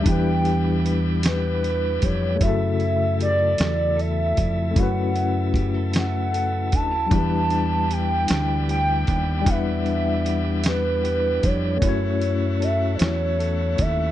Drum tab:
HH |xxxxxx|xxxxxx|xxxxxx|xxxxxx|
SD |---o--|---o--|---o--|---o--|
BD |o----o|o----o|o-o--o|o----o|

HH |xxxxxx|xxxxxx|
SD |---o--|---o--|
BD |o----o|o----o|